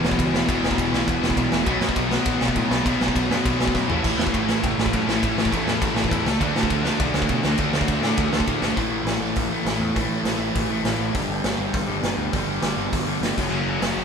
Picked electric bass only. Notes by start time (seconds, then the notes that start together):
0.03 E1
0.19 C#2
0.32 E1
0.48 E1
0.63 E1
0.78 E1
0.92 B1
1.07 E1
1.22 E1
1.37 B1
1.52 E1
1.66 B1
1.81 F#2
1.96 B1
2.26 A1
2.41 B1
2.55 A2
2.71 B1
2.85 B1
3.01 B1
3.15 B1
3.30 F#2
3.45 B1
3.59 B1
3.74 F#2
3.88 A1
4.04 A1
4.18 E2
4.34 A1
4.63 F#1
4.78 A1
4.93 F#2
5.07 A1
5.22 A1
5.36 A1
5.52 A1
5.66 E2
5.81 A1
5.95 A1
6.11 E2
6.25 C#2
6.41 D2
6.55 A2
6.70 D2
6.99 B1
7.15 D2
7.30 B2
7.45 D2
7.59 D2
7.73 D2
7.88 D2
8.02 A2
8.18 D2
8.32 D2
8.47 A2
8.61 G#1
8.77 A1
8.91 A1
9.05 A1
9.20 A1
9.36 A1
9.49 A1
9.65 A1
9.80 E2
9.96 A1
10.09 A1
10.25 A1
10.39 A1
10.55 A1
10.69 A1
10.84 A1
10.99 A1
11.15 G1
11.29 G1
11.45 G1
11.59 G1
11.73 G1
11.88 G1
12.03 G1
12.17 D2
12.33 G1
12.47 G1
12.62 G1
12.77 G1
12.92 G1
13.06 G1
13.21 G1
13.37 F#1
13.51 F#1
13.66 F#1
13.81 F#1
13.96 F#1